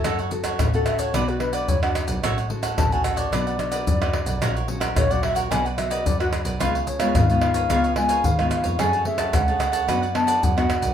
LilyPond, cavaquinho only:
\new Staff \with { instrumentName = "Cavaquinho" } { \time 4/4 \key fis \minor \tempo 4 = 110 <fis' a' cis'' fis''>16 <a' cis'' fis''>16 r16 <a' cis'' fis''>8 <a' cis'' fis''>16 <fis' a' cis'' fis''>16 <a' cis'' fis''>16 <d' b' d'' fis''>16 <b' d'' fis''>16 r16 <b' d'' fis''>8 <b' d'' fis''>8 <b' d'' fis''>16 | <fis' a' cis'' fis''>16 <a' cis'' fis''>16 r16 <a' cis'' fis''>8 <a' cis'' fis''>16 <fis' a' cis'' fis''>16 <a' cis'' fis''>16 <d' b' d'' fis''>16 <b' d'' fis''>16 r16 <b' d'' fis''>8 <b' d'' fis''>8 <b' d'' fis''>16 | <fis' ais' cis'' fis''>16 <ais' cis'' fis''>16 r16 <ais' cis'' fis''>8 <ais' cis'' fis''>16 <fis' ais' cis'' fis''>16 <ais' cis'' fis''>16 <d' b' d'' fis''>16 <b' d'' fis''>16 r16 <b' d'' fis''>8 <b' d'' fis''>8 <b' d'' fis''>16 | <eis' b' cis'' eis''>16 <b' cis'' eis''>16 r16 <b' cis'' eis''>8 <b' cis'' eis''>16 <eis' b' cis'' eis''>16 <b' cis'' eis''>16 <eis' b' cis'' eis''>16 <b' cis'' eis''>16 r16 <b' cis'' eis''>8 <b' cis'' eis''>8 <b' cis'' eis''>16 |
<gis' cis'' fis'' a''>16 <cis'' fis'' a''>16 r16 <cis'' fis'' a''>8 <cis'' fis'' a''>16 <gis' cis'' fis'' a''>16 <cis'' fis'' a''>16 <d' b' d'' fis''>16 <b' d'' fis''>16 r16 <b' d'' fis''>8 <b' d'' fis''>8 <b' d'' fis''>16 | }